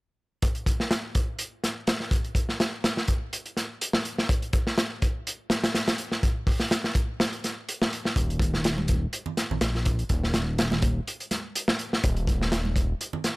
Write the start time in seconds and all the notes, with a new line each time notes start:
0.42 kick, closed hi-hat
0.55 closed hi-hat
0.66 kick, closed hi-hat
0.80 snare
0.91 snare, closed hi-hat
1.15 kick, closed hi-hat
1.39 closed hi-hat
1.64 snare, closed hi-hat
1.87 snare, closed hi-hat
2.00 snare
2.11 kick, closed hi-hat
2.24 closed hi-hat
2.35 kick, closed hi-hat
2.49 snare
2.60 snare, closed hi-hat
2.84 snare, closed hi-hat
2.97 snare
3.08 kick, closed hi-hat
3.33 closed hi-hat
3.46 closed hi-hat
3.57 snare, closed hi-hat
3.81 closed hi-hat
3.93 snare
4.05 closed hi-hat
4.18 snare
4.29 kick, closed hi-hat
4.42 closed hi-hat
4.53 kick, closed hi-hat
4.67 snare
4.78 snare, closed hi-hat
5.02 kick, closed hi-hat
5.27 closed hi-hat
5.50 snare, closed hi-hat
5.64 snare, closed hi-hat
5.75 snare, closed hi-hat
5.88 snare, closed hi-hat
5.98 closed hi-hat
6.12 snare
6.23 kick, closed hi-hat
6.47 kick, open hi-hat
6.60 snare
6.71 snare, closed hi-hat
6.84 snare
6.95 kick, closed hi-hat
7.20 snare, closed hi-hat
7.33 closed hi-hat
7.44 snare, closed hi-hat
7.69 closed hi-hat
7.82 snare
7.93 closed hi-hat
8.05 snare
8.16 D#1, kick, closed hi-hat
8.30 closed hi-hat
8.39 kick, closed hi-hat, high conga
8.54 snare
8.64 snare, closed hi-hat
8.78 high conga
8.88 kick, closed hi-hat
9.13 closed hi-hat
9.26 low conga
9.37 snare, closed hi-hat
9.50 A#1, low conga
9.61 A#1, snare, closed hi-hat
9.75 snare
9.85 kick, closed hi-hat
9.99 closed hi-hat
10.09 D#1, kick, closed hi-hat
10.23 snare
10.34 snare, closed hi-hat, high conga
10.58 snare, closed hi-hat
10.71 snare, high conga, low conga
10.82 kick, closed hi-hat
11.07 closed hi-hat
11.20 closed hi-hat
11.31 snare, closed hi-hat, high conga
11.55 closed hi-hat
11.68 snare
11.79 closed hi-hat
11.93 snare
12.04 D#1, kick, closed hi-hat
12.16 closed hi-hat
12.27 kick, closed hi-hat, high conga
12.41 snare
12.52 snare, closed hi-hat
12.65 high conga
12.76 kick, closed hi-hat
13.01 closed hi-hat
13.13 low conga
13.24 snare, closed hi-hat